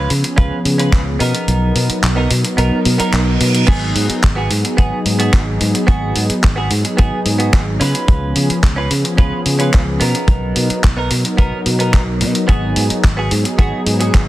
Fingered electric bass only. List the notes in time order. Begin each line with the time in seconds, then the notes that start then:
0.10 C#3
0.38 C#2
0.65 C#3
0.93 C#2
1.20 B2
1.48 B1
1.75 B2
1.89 muted fingered electric bass stroke
2.03 B1
2.30 B2
2.58 B1
2.85 B2
2.99 muted fingered electric bass stroke
3.13 B1
3.40 B2
3.68 G#1
3.95 G#2
4.09 muted fingered electric bass stroke
4.24 G#1
4.50 G#2
4.78 G#1
5.05 G#2
5.33 G#1
5.61 G#2
5.88 G#1
6.16 G#2
6.30 muted fingered electric bass stroke
6.44 G#1
6.70 G#2
6.99 G#1
7.12 muted fingered electric bass stroke
7.25 G#2
7.53 G#1
7.80 C#3
8.08 C#2
8.36 C#3
8.50 muted fingered electric bass stroke
8.63 C#2
8.90 C#3
9.18 C#2
9.46 C#3
9.74 C#2
10.01 B2
10.28 B1
10.56 B2
10.70 muted fingered electric bass stroke
10.84 B1
11.11 B2
11.38 B1
11.52 muted fingered electric bass stroke
11.66 B2
11.94 B1
12.21 B2
12.49 G#1
12.76 G#2
12.90 muted fingered electric bass stroke
13.04 G#1
13.31 G#2
13.59 G#1
13.86 G#2
14.14 G#1